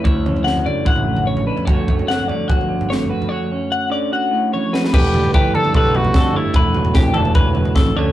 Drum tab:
CC |----------------|----------------|----------------|x---------------|
SD |----o-----------|----o-------o---|--------------oo|------------o---|
T1 |----------------|----------------|------------o---|----------------|
T2 |--o--o---o-o----|----------------|----------------|--o---oo--o-----|
FT |o-oo-oo-oo-o-o-o|o-oo-oo-oo-o-o-o|----------------|o--o--o-o--o----|
BD |o-------o-------|o-o-----o-------|----------------|o---o---o---o---|

CC |----------------|
SD |----o-------o---|
T1 |----------------|
T2 |--o---oo--o-----|
FT |o--o--o-o--o----|
BD |o---o---o---o---|